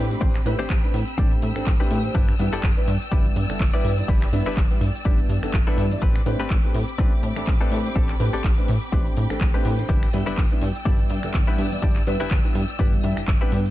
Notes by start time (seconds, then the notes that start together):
Already playing: A2 C4 G5 B5 D6
0.11 A3 C4 D4 G4 C5, closed hi-hat, shaker
0.21 A1 C4 D4 G4 C5 E6, kick, closed hi-hat, shaker
0.35 finger snap, clap, closed hi-hat, shaker
0.46 A2 A3 C4 D4 G4 B4, open hi-hat
0.59 A1 C4 D4 G4 C5, finger snap, closed hi-hat, shaker
0.70 A1, kick, clap, closed hi-hat, shaker
0.83 A3 C4 D4 G4 B4, closed hi-hat, shaker
0.94 A2, muted clean electric guitar stroke, open hi-hat
1.08 closed hi-hat, shaker
1.18 A1 A3 C4 D4 G4 D5, kick, closed hi-hat, shaker
1.32 closed hi-hat, shaker
1.42 A2, muted clean electric guitar stroke, open hi-hat
1.56 A1 A3 C4 D4 G4 A4, finger snap, closed hi-hat, shaker
1.67 A1, kick, clap, closed hi-hat, shaker
1.80 A3 C4 D4 G4 B4, closed hi-hat, shaker
1.91 A2, open hi-hat
2.04 A3 C4 D4 G4 C5, closed hi-hat, shaker
2.15 G1 D4 E4 G4 B4 D5, kick, closed hi-hat, shaker
2.29 finger snap, closed hi-hat, shaker
2.39 G2 G3 B3 D4 E4 B4, open hi-hat
2.53 G1 D4 E4 G4 A4, finger snap, closed hi-hat, shaker
2.63 G1, kick, clap, closed hi-hat, shaker
2.77 G3 B3 D4 E4 B4, closed hi-hat, shaker
2.88 G2, muted clean electric guitar stroke, open hi-hat
3.01 closed hi-hat, shaker
3.12 G1 G3 B3 D4 E4 G4 B4 D5, kick, closed hi-hat, shaker
3.26 closed hi-hat, shaker
3.36 G2, muted clean electric guitar stroke, open hi-hat
3.49 G1 G3 B3 D4 E4 A4, finger snap, shaker
3.60 G1, kick, clap, closed hi-hat, shaker
3.74 G3 B3 D4 E4 G4 B4 D5, closed hi-hat, shaker
3.85 G2, open hi-hat
3.98 G3 B3 D4 E4 D5, closed hi-hat, shaker
4.08 G1 D4 E4 G4 B4, kick, closed hi-hat, shaker
4.22 finger snap, clap, closed hi-hat, shaker
4.33 G2 G3 B3 D4 E4 B4, open hi-hat
4.46 G1 D4 E4 G4 B4, finger snap, shaker
4.57 G1, kick, clap, closed hi-hat, shaker
4.70 G3 B3 D4 E4 B4, closed hi-hat, shaker
4.81 G2, muted clean electric guitar stroke, open hi-hat
4.95 closed hi-hat, shaker
5.05 G1 G3 B3 D4 E4 G4 B4 D5, kick, closed hi-hat, shaker
5.19 closed hi-hat, shaker
5.29 G2, muted clean electric guitar stroke, open hi-hat
5.43 G1 G3 B3 D4 E4 A4, finger snap, closed hi-hat, shaker
5.54 G1, kick, clap, closed hi-hat, shaker
5.67 G3 B3 D4 E4 G4 A4 B4, closed hi-hat, shaker
5.78 G2, open hi-hat
5.91 G3 B3 D4 E4 D5, closed hi-hat, shaker
6.02 A1 C4 D4 G4 B4 G5 B5 D6, kick, closed hi-hat, shaker
6.16 finger snap, closed hi-hat, shaker
6.26 A2 A3 C4 D4 G4 B4, open hi-hat
6.40 A1 C4 D4 G4 B4, finger snap, closed hi-hat, shaker
6.50 A1, kick, clap, closed hi-hat, shaker
6.64 A3 C4 D4 G4 B4, closed hi-hat, shaker
6.74 A2, muted clean electric guitar stroke, open hi-hat
6.88 closed hi-hat, shaker
6.98 A1 A3 C4 D4 G4 B4, kick, closed hi-hat, shaker
7.12 closed hi-hat, shaker
7.23 A2, muted clean electric guitar stroke, open hi-hat
7.36 A1 A3 C4 D4 G4 A4, finger snap, closed hi-hat, shaker
7.47 A1, kick, clap, closed hi-hat, shaker
7.60 A3 C4 D4 G4 A4 B4, closed hi-hat, shaker
7.72 A2, open hi-hat
7.85 A3 C4 D4 G4 C5, closed hi-hat, shaker
7.96 A1 C4 D4 G4 A4, kick, closed hi-hat, shaker
8.09 finger snap, clap, closed hi-hat, shaker
8.19 A2 A3 C4 D4 G4 B4, open hi-hat
8.33 A1 C4 D4 G4 A4, finger snap, closed hi-hat, shaker
8.44 A1, kick, clap, closed hi-hat, shaker
8.57 A3 C4 D4 G4 B4, closed hi-hat, shaker
8.68 A2, muted clean electric guitar stroke, open hi-hat
8.82 closed hi-hat, shaker
8.92 A1 A3 C4 D4 G4 B4, kick, closed hi-hat, shaker
9.06 closed hi-hat, shaker
9.17 A2, muted clean electric guitar stroke, open hi-hat
9.30 A1 A3 C4 D4 G4 A4, finger snap, closed hi-hat, shaker
9.41 A1, kick, clap, closed hi-hat, shaker
9.54 A3 C4 D4 G4 B4, closed hi-hat, shaker
9.65 A2, open hi-hat
9.78 A3 C4 D4 G4 C5, closed hi-hat, shaker
9.89 G1 D4 E4 G4 B4 D5 E6, kick, closed hi-hat, shaker
10.03 finger snap, closed hi-hat, shaker
10.13 G2 G3 B3 D4 E4 B4, open hi-hat
10.26 G1 D4 E4 G4 B4, finger snap, closed hi-hat, shaker
10.38 G1, kick, clap, closed hi-hat, shaker
10.51 G3 B3 D4 E4 B4, closed hi-hat, shaker
10.62 G2, muted clean electric guitar stroke, open hi-hat
10.75 closed hi-hat, shaker
10.85 G1 G3 B3 D4 E4 G4 D5, kick, closed hi-hat, shaker
10.99 closed hi-hat, shaker
11.10 G2, muted clean electric guitar stroke, open hi-hat
11.23 G1 G3 B3 D4 E4 A4, finger snap, closed hi-hat, shaker
11.34 G1, kick, clap, closed hi-hat, shaker
11.47 G3 B3 D4 E4 G4 B4, closed hi-hat, shaker
11.58 G2, open hi-hat
11.72 G3 B3 D4 E4 D5, closed hi-hat, shaker
11.82 G1 D4 E4 G4 D5, kick, closed hi-hat, shaker
11.96 finger snap, clap, closed hi-hat, shaker
12.07 G2 G3 B3 D4 E4 B4, open hi-hat
12.20 G1 D4 E4 G4 B4, finger snap, closed hi-hat, shaker
12.31 G1, kick, clap, closed hi-hat, shaker
12.44 G3 B3 D4 E4 B4, closed hi-hat, shaker
12.55 G2, muted clean electric guitar stroke, open hi-hat
12.69 closed hi-hat, shaker
12.79 G1 G3 B3 D4 E4 G4 B4 D5, kick, closed hi-hat, shaker
12.93 closed hi-hat, shaker
13.03 G2 G3 B3 D4 E4 E5, muted clean electric guitar stroke, open hi-hat
13.17 G1, finger snap, closed hi-hat, shaker
13.28 G1, kick, clap, closed hi-hat, shaker
13.41 G3 B3 D4 E4 G4 B4, closed hi-hat, shaker
13.52 G2, open hi-hat
13.66 closed hi-hat, shaker